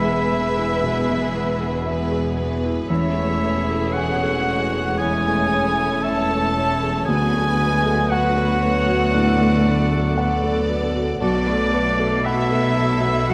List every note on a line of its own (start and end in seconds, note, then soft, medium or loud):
0.00 2.86 E1 medium
0.00 0.78 E2 medium
0.00 2.85 E2 medium
0.00 2.62 E3 medium
0.00 0.30 G#3 medium
0.00 1.10 G#3 soft
0.00 2.72 B3 medium
0.00 1.33 E4 soft
0.00 2.37 E4 medium
0.00 0.05 G#4 soft
0.00 0.79 G#4 medium
0.00 2.72 G#4 medium
0.00 0.29 B4 soft
0.00 0.31 B4 soft
0.00 1.82 B4 medium
0.00 0.19 E5 medium
0.00 2.36 E5 medium
0.00 2.37 E5 medium
0.05 0.46 G#4 soft
0.29 0.80 A3 soft
0.29 2.36 B4 soft
0.29 0.72 B4 medium
0.58 0.98 E4 soft
0.81 1.24 B2 soft
0.81 1.83 B3 medium
0.81 1.83 G#4 medium
1.10 1.50 G#3 soft
1.34 4.98 E4 soft
1.34 1.76 B4 soft
1.60 2.01 G#4 soft
1.85 2.88 B3 medium
1.85 2.89 G#4 medium
1.85 2.37 B4 medium
1.85 2.27 E5 soft
2.12 2.53 G#4 medium
2.38 2.94 B4 soft
2.38 2.79 B4 soft
2.38 2.89 B4 medium
2.65 2.90 E4 soft
2.89 7.04 E1 medium
2.89 7.04 E2 medium
2.89 4.96 E2 medium
2.89 6.79 E3 medium
2.89 7.03 E3 medium
2.89 3.94 A3 medium
2.89 7.08 C#4 medium
2.89 3.96 E4 medium
2.89 5.00 G#4 medium
2.89 3.93 C#5 medium
2.89 3.94 E5 medium
2.89 3.91 E5 medium
3.17 3.58 A3 soft
3.42 5.50 A3 soft
3.42 3.85 C#5 soft
3.70 4.11 A4 soft
3.93 4.46 A3 medium
3.93 5.00 F#4 medium
3.93 6.02 C#5 soft
3.93 6.00 C#5 medium
3.93 4.97 F#5 medium
3.93 5.00 F#5 medium
3.97 4.38 G#5 medium
4.23 4.64 A4 soft
4.48 4.99 G#3 medium
4.48 4.90 C#5 soft
4.75 5.16 G#4 soft
4.97 5.42 E3 soft
4.97 5.51 G#3 medium
4.97 7.12 E4 soft
4.97 7.04 E4 medium
4.97 6.05 G#4 medium
4.97 6.04 G#5 medium
4.97 6.03 G#5 medium
5.27 5.68 A3 soft
5.51 7.58 A3 soft
5.51 6.03 A3 medium
5.51 5.94 C#5 soft
5.79 6.20 A4 soft
6.02 7.06 A3 medium
6.02 7.05 A4 medium
6.02 6.54 C#5 medium
6.02 7.12 C#5 soft
6.02 6.46 E5 soft
6.02 7.07 A5 medium
6.02 7.04 A5 medium
6.30 6.71 A4 soft
6.55 7.11 A4 soft
6.55 7.06 C#5 medium
6.55 6.98 C#5 soft
6.83 7.08 G#4 soft
7.05 11.21 D2 medium
7.05 9.10 D2 medium
7.05 10.97 D3 medium
7.05 11.05 F#3 medium
7.05 7.59 B3 medium
7.05 11.05 B3 medium
7.05 9.10 F#4 medium
7.05 8.13 G#4 medium
7.05 8.08 B4 medium
7.05 8.11 G#5 medium
7.05 8.10 G#5 medium
7.33 7.75 A3 soft
7.59 8.10 G#3 medium
7.59 9.64 A3 medium
7.59 8.01 B4 medium
7.86 8.27 A4 soft
8.09 10.17 A3 medium
8.09 10.69 F#4 medium
8.09 8.60 B4 medium
8.09 10.16 B4 soft
8.09 10.68 F#5 medium
8.09 8.53 F#5 medium
8.09 10.66 F#5 medium
8.37 8.78 A4 medium
8.62 10.68 F#4 soft
8.62 9.04 B4 medium
8.62 9.14 C#5 medium
8.89 9.30 F#4 soft
9.13 9.55 A2 medium
9.13 13.03 D4 soft
9.13 10.15 A4 medium
9.13 10.14 D5 medium
9.41 9.81 A3 soft
9.66 11.72 A3 soft
9.66 10.07 B4 medium
9.92 10.33 A4 soft
10.16 11.19 B3 medium
10.16 11.18 A4 medium
10.16 12.24 B4 soft
10.16 11.18 D5 medium
10.16 10.59 F#5 soft
10.44 10.85 A4 medium
10.69 12.75 F#4 soft
10.69 11.11 B4 medium
10.96 11.21 F#4 soft
11.20 13.25 B1 medium
11.20 13.34 B1 medium
11.20 13.34 B2 medium
11.20 13.34 F#3 medium
11.20 11.45 B3 medium
11.20 13.34 B3 medium
11.20 12.27 D4 medium
11.20 11.44 F#4 medium
11.20 11.45 A4 medium
11.20 12.21 D5 medium
11.20 12.26 D5 medium
11.47 11.88 A3 soft
11.47 11.73 A3 medium
11.47 11.73 A4 medium
11.47 11.73 B4 medium
11.73 13.34 A3 medium
11.73 11.99 B3 medium
11.73 11.99 F#4 medium
11.73 11.99 A4 medium
11.73 12.15 B4 medium
11.99 12.25 A3 medium
11.99 12.25 A4 medium
11.99 12.41 A4 soft
11.99 12.26 B4 medium
12.24 12.49 B3 medium
12.24 13.29 E4 medium
12.24 12.49 F#4 medium
12.24 12.50 A4 medium
12.24 13.34 B4 medium
12.24 13.32 E5 medium
12.24 13.27 E5 medium
12.24 12.67 F#5 medium
12.51 12.77 A3 medium
12.51 12.92 A4 medium
12.51 12.77 A4 medium
12.51 12.77 B4 medium
12.76 13.02 B3 medium
12.76 13.34 F#4 soft
12.76 13.03 F#4 soft
12.76 13.02 A4 medium
12.76 13.18 B4 medium
13.03 13.29 A3 medium
13.03 13.34 F#4 soft
13.03 13.29 A4 medium
13.03 13.29 B4 medium
13.28 13.34 F#2 medium
13.28 13.34 F#3 medium
13.28 13.34 B3 medium
13.28 13.34 F#4 medium
13.28 13.34 A4 medium
13.28 13.34 F#5 medium